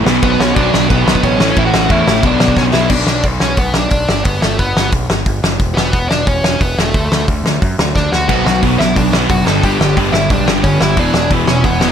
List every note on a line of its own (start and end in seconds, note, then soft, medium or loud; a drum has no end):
0.05 0.18 B1 loud
0.05 0.54 B2 medium
0.05 0.55 F#3 loud
0.05 0.55 B3 loud
0.05 0.55 D4 loud
0.05 0.56 F#4 loud
0.05 snare loud
0.23 0.35 B1 loud
0.23 0.39 B3 medium
0.23 0.40 B4 medium
0.23 kick loud
0.23 crash medium
0.40 0.52 B1 loud
0.40 0.56 C#4 medium
0.40 0.55 C#5 medium
0.40 snare loud
0.55 0.69 B1 loud
0.55 1.05 B2 medium
0.55 1.06 F#3 medium
0.55 1.06 B3 medium
0.55 0.87 D4 medium
0.55 1.06 D4 medium
0.55 1.06 F#4 medium
0.55 0.89 D5 medium
0.55 kick loud
0.55 crash medium
0.74 0.86 B1 medium
0.74 snare loud
0.90 1.03 B1 medium
0.90 1.21 B3 medium
0.90 1.24 B4 loud
0.90 kick loud
0.90 crash medium
1.06 1.19 B1 medium
1.06 1.39 B2 medium
1.06 1.39 F#3 medium
1.06 1.39 B3 medium
1.06 1.39 D4 medium
1.06 1.39 F#4 loud
1.06 snare loud
1.15 kick medium
1.23 1.36 A1 medium
1.23 1.47 C#4 medium
1.23 1.47 C#5 medium
1.23 kick loud
1.23 crash medium
1.39 1.52 A1 medium
1.39 1.88 A2 medium
1.39 1.89 E3 loud
1.39 1.89 A3 medium
1.39 1.89 C#4 loud
1.39 1.90 E4 loud
1.39 snare loud
1.50 1.57 C#4 medium
1.50 1.57 C#5 medium
1.56 1.70 A1 loud
1.56 1.62 E4 medium
1.56 1.62 E5 loud
1.56 kick loud
1.56 crash medium
1.65 1.89 F#4 medium
1.65 1.91 F#5 loud
1.73 1.86 A1 loud
1.73 snare loud
1.89 2.03 E2 loud
1.89 2.22 A2 medium
1.89 2.23 E3 medium
1.89 2.23 A3 medium
1.89 2.23 C#4 medium
1.89 2.24 E4 medium
1.89 2.22 E4 medium
1.89 2.22 E5 medium
1.89 kick loud
1.89 crash medium
2.07 2.20 A1 medium
2.07 snare loud
2.23 2.36 B1 medium
2.23 2.73 B2 medium
2.23 2.73 F#3 medium
2.23 2.72 B3 medium
2.23 2.72 D4 loud
2.23 2.56 D4 medium
2.23 2.72 F#4 medium
2.23 kick loud
2.23 crash medium
2.27 2.57 D5 loud
2.40 2.53 B1 medium
2.40 snare loud
2.48 kick medium
2.57 2.70 B1 medium
2.57 2.64 C#4 medium
2.57 2.63 C#5 medium
2.57 kick loud
2.57 snare medium
2.73 2.87 B1 loud
2.73 2.90 B2 medium
2.73 2.90 F#3 medium
2.73 2.90 B3 medium
2.73 2.89 D4 medium
2.73 2.90 E4 medium
2.73 2.89 F#4 medium
2.73 2.89 E5 loud
2.73 snare medium
2.89 3.05 B1 medium
2.89 3.22 D4 medium
2.89 3.24 D5 medium
2.89 kick loud
2.89 crash loud
3.07 3.21 B1 loud
3.07 snare loud
3.23 3.38 B1 medium
3.23 kick loud
3.23 open hi-hat medium
3.40 3.55 B1 medium
3.40 3.57 C#4 medium
3.40 3.59 C#5 medium
3.40 snare loud
3.57 3.86 B1 medium
3.57 3.74 B3 medium
3.57 3.77 B4 medium
3.57 kick loud
3.57 open hi-hat medium
3.74 3.89 D4 medium
3.74 3.90 D5 medium
3.74 snare loud
3.90 4.06 B1 medium
3.90 4.22 D4 medium
3.90 4.25 D5 medium
3.90 kick loud
3.90 open hi-hat medium
4.09 4.23 G1 medium
4.09 snare loud
4.23 4.39 G1 medium
4.23 4.40 B3 medium
4.23 4.41 B4 medium
4.23 kick loud
4.23 open hi-hat medium
4.40 4.57 G1 medium
4.40 4.57 A3 medium
4.40 4.58 A4 medium
4.40 snare loud
4.58 4.73 G1 medium
4.58 4.90 B3 medium
4.58 4.90 B4 medium
4.58 kick medium
4.58 open hi-hat soft
4.76 4.90 G1 medium
4.76 snare loud
4.92 5.06 B1 medium
4.92 kick loud
4.92 open hi-hat medium
5.09 5.23 G1 medium
5.09 snare loud
5.26 5.41 G1 medium
5.26 kick loud
5.26 open hi-hat medium
5.42 5.57 F#1 medium
5.42 snare loud
5.60 5.74 E1 medium
5.60 kick loud
5.60 open hi-hat medium
5.75 5.91 E1 loud
5.75 6.07 B3 medium
5.75 6.07 B4 loud
5.75 snare loud
5.93 6.07 E1 loud
5.93 kick loud
5.93 open hi-hat medium
6.09 6.24 E1 medium
6.09 6.26 D4 medium
6.09 6.25 D5 loud
6.09 snare loud
6.27 6.55 E1 medium
6.27 6.59 C#4 medium
6.27 6.61 C#5 medium
6.27 kick loud
6.27 open hi-hat medium
6.44 snare loud
6.61 6.75 E1 medium
6.61 6.77 B3 medium
6.61 6.79 B4 medium
6.61 kick loud
6.61 open hi-hat medium
6.78 6.92 E1 medium
6.78 7.25 A3 medium
6.78 7.25 A4 medium
6.78 snare loud
6.94 7.08 D2 loud
6.94 kick loud
6.94 open hi-hat medium
7.11 7.25 D2 loud
7.11 snare loud
7.28 7.42 D2 medium
7.28 kick medium
7.28 open hi-hat medium
7.44 7.58 D2 medium
7.44 snare loud
7.62 7.76 F#2 medium
7.62 kick loud
7.62 open hi-hat medium
7.78 7.92 D2 medium
7.78 snare loud
7.96 8.10 D2 medium
7.96 8.12 D4 medium
7.96 8.13 D5 medium
7.96 kick loud
7.96 snare medium
8.12 8.26 D2 medium
8.12 8.29 F#4 medium
8.12 8.28 F#5 medium
8.12 snare medium
8.29 8.43 B1 medium
8.29 8.46 B2 medium
8.29 8.47 F#3 loud
8.29 8.47 B3 loud
8.29 8.47 D4 medium
8.29 8.61 F#4 medium
8.29 8.46 F#4 loud
8.29 8.60 F#5 medium
8.29 kick loud
8.29 crash medium
8.45 8.60 B1 loud
8.45 8.61 B2 medium
8.45 8.62 F#3 medium
8.45 8.62 B3 medium
8.45 8.63 D4 medium
8.45 8.63 F#4 medium
8.45 snare loud
8.62 8.77 B1 medium
8.62 8.79 B2 medium
8.62 8.78 F#3 medium
8.62 8.79 B3 medium
8.62 8.79 D4 medium
8.62 8.77 F#4 medium
8.62 kick loud
8.62 open hi-hat medium
8.78 8.93 B1 medium
8.78 8.94 B2 medium
8.78 8.95 F#3 medium
8.78 8.96 B3 medium
8.78 8.95 D4 medium
8.78 8.96 E4 medium
8.78 8.96 F#4 loud
8.78 8.96 E5 loud
8.78 snare loud
8.96 9.25 B1 medium
8.96 9.14 B2 medium
8.96 9.13 F#3 medium
8.96 9.14 B3 medium
8.96 9.12 D4 medium
8.96 9.13 F#4 loud
8.96 9.13 D5 loud
8.96 kick loud
8.96 open hi-hat medium
9.13 9.29 B2 medium
9.13 9.29 F#3 medium
9.13 9.31 B3 medium
9.13 9.30 D4 medium
9.13 9.30 F#4 loud
9.13 snare loud
9.29 9.44 F#1 medium
9.29 9.46 B2 medium
9.29 9.46 F#3 loud
9.29 9.47 B3 medium
9.29 9.46 D4 loud
9.29 9.45 F#4 medium
9.29 9.46 F#4 loud
9.29 9.45 F#5 medium
9.29 kick loud
9.29 open hi-hat medium
9.45 9.60 G1 medium
9.45 9.62 G2 loud
9.45 9.62 D3 medium
9.45 9.63 G3 loud
9.45 9.63 B3 medium
9.45 9.62 D4 loud
9.45 9.62 G4 loud
9.45 9.61 A4 medium
9.45 9.64 A5 medium
9.45 snare loud
9.63 9.77 G1 medium
9.63 9.78 G2 medium
9.63 9.79 D3 loud
9.63 9.80 G3 medium
9.63 9.81 B3 medium
9.63 9.81 D4 medium
9.63 9.81 G4 loud
9.63 9.95 G4 medium
9.63 9.97 G5 loud
9.63 kick loud
9.63 open hi-hat medium
9.79 9.94 G1 loud
9.79 9.95 G2 medium
9.79 9.95 D3 medium
9.79 9.98 G3 medium
9.79 9.99 B3 medium
9.79 9.97 D4 medium
9.79 9.97 G4 loud
9.79 snare loud
9.97 10.11 G1 medium
9.97 10.12 G2 medium
9.97 10.13 D3 medium
9.97 10.14 G3 medium
9.97 10.15 B3 medium
9.97 10.14 D4 medium
9.97 10.14 G4 medium
9.97 kick loud
9.97 open hi-hat medium
10.12 10.27 G1 medium
10.12 10.29 G2 medium
10.12 10.29 D3 medium
10.12 10.31 G3 medium
10.12 10.30 B3 loud
10.12 10.30 D4 loud
10.12 10.29 E4 medium
10.12 10.30 G4 loud
10.12 10.28 E5 loud
10.12 snare loud
10.30 10.44 B1 loud
10.30 10.45 G2 medium
10.30 10.46 D3 medium
10.30 10.47 G3 medium
10.30 10.47 B3 medium
10.30 10.47 D4 medium
10.30 10.48 G4 loud
10.30 10.48 D5 medium
10.30 kick loud
10.30 open hi-hat medium
10.46 10.61 G1 medium
10.46 10.63 G2 medium
10.46 10.63 D3 medium
10.46 10.64 G3 medium
10.46 10.63 B3 medium
10.46 10.63 D4 loud
10.46 10.63 G4 medium
10.46 snare loud
10.63 10.78 G1 medium
10.63 10.79 G2 medium
10.63 10.79 D3 medium
10.63 10.79 G3 medium
10.63 10.80 B3 medium
10.63 10.80 C#4 medium
10.63 10.81 D4 medium
10.63 10.81 G4 loud
10.63 10.82 C#5 medium
10.63 kick loud
10.63 open hi-hat medium
10.80 10.98 G1 medium
10.80 10.96 G2 medium
10.80 10.96 D3 medium
10.80 10.96 G3 loud
10.80 10.97 B3 loud
10.80 10.97 D4 medium
10.80 10.97 E4 medium
10.80 10.97 G4 loud
10.80 10.98 E5 loud
10.80 snare loud
10.97 11.12 E1 medium
10.97 11.12 E2 loud
10.97 11.13 B2 loud
10.97 11.14 E3 loud
10.97 11.14 B3 medium
10.97 11.29 D4 medium
10.97 11.14 E4 loud
10.97 11.13 G#4 loud
10.97 11.29 D5 medium
10.97 kick loud
10.97 open hi-hat medium
11.14 11.28 E1 loud
11.14 11.29 E2 medium
11.14 11.29 B2 medium
11.14 11.29 E3 medium
11.14 11.30 B3 medium
11.14 11.30 E4 loud
11.14 11.30 G#4 medium
11.14 snare loud
11.30 11.45 E1 medium
11.30 11.47 E2 medium
11.30 11.47 B2 medium
11.30 11.48 E3 medium
11.30 11.47 B3 medium
11.30 11.47 E4 medium
11.30 11.47 G#4 medium
11.30 kick loud
11.30 open hi-hat medium
11.47 11.62 E1 medium
11.47 11.63 E2 medium
11.47 11.63 B2 medium
11.47 11.63 E3 medium
11.47 11.63 B3 loud
11.47 11.63 C#4 medium
11.47 11.64 E4 loud
11.47 11.64 G#4 loud
11.47 11.64 C#5 medium
11.47 snare loud
11.64 11.92 E1 medium
11.64 11.80 E2 medium
11.64 11.80 B2 medium
11.64 11.81 E3 medium
11.64 11.81 B3 medium
11.64 11.88 B3 medium
11.64 11.81 E4 medium
11.64 11.80 G#4 medium
11.64 11.90 B4 loud
11.64 kick loud
11.64 open hi-hat medium
11.81 11.92 E2 medium
11.81 11.92 B2 medium
11.81 11.92 E3 medium
11.81 11.92 B3 medium
11.81 11.92 E4 medium
11.81 11.92 G#4 medium
11.81 snare loud
11.89 11.92 D4 medium